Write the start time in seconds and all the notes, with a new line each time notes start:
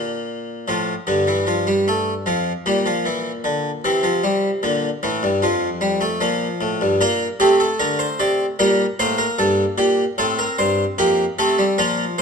Already playing: A#2
0.68 A2 F3
1.07 G2 D3
1.27 E3
1.47 F3
1.67 G3
1.88 A3
2.26 F2 F3
2.66 A#2 G3
2.86 F3
3.06 E3
3.44 D3
3.84 C3 E3
4.03 F3
4.24 G3
4.63 A#2 D3
5.03 A2 E3
5.23 G2
5.42 F2 F3
5.81 G3
6.01 A3
6.21 A#2 F3
6.61 A2
6.81 G2
7.01 A#2 A#3 A#4
7.40 C3 A3 G4
7.60 A4
7.80 D3 A#4
7.99 C5
8.20 C3 D5
8.59 A#2 G3 A#4
8.99 A2 A#3 C5
9.18 A#4
9.39 G2 A4
9.78 A#2 G4
10.18 A2 C4 A4
10.39 A#4
10.59 G2 C5
10.98 F2 A#3 G4
11.39 C3 A3 A4
11.59 G3
11.78 A#2 F3 A#4
12.18 A2 C5